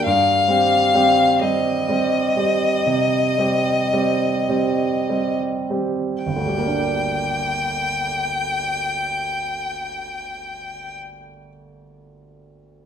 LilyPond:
<<
  \new Staff \with { instrumentName = "Violin" } { \time 4/4 \key g \minor \tempo 4 = 36 f''4 ees''2~ ees''8 r8 | g''1 | }
  \new Staff \with { instrumentName = "Grand piano" } { \time 4/4 \key g \minor \tuplet 3/2 { g,8 <g c' g'>8 <g c' g'>8 <g c' g'>8 <g c' g'>8 <g c' g'>8 c8 <g c' g'>8 <g c' g'>8 <g c' g'>8 <g c' g'>8 <g c' g'>8 } | <g,, d, g bes d' g'>1 | }
>>